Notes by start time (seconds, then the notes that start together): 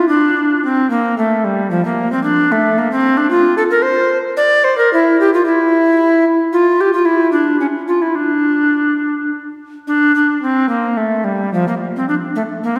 0.08 D4
0.37 D4
0.65 C4
0.90 A#3
1.18 A3
1.45 G3
1.71 F3
1.85 A#3
2.12 C4
2.23 D4
2.52 A3
2.78 A#3
2.92 C4
3.17 D4
3.30 F4
3.57 A4
3.71 A#4
3.82 C5
4.37 D5
4.64 C5
4.78 A#4
4.93 E4
5.20 G4
5.34 F4
5.46 E4
6.53 F4
6.81 G4
6.94 F4
7.05 E4
7.32 D4
7.60 C#4
7.88 F4
8.02 E4
8.15 D4
9.87 D4
10.16 D4
10.42 C4
10.69 A#3
10.97 A3
11.24 G3
11.54 F3
11.68 A#3
11.96 C4
12.08 D4
12.36 A3
12.64 A#3
12.76 C4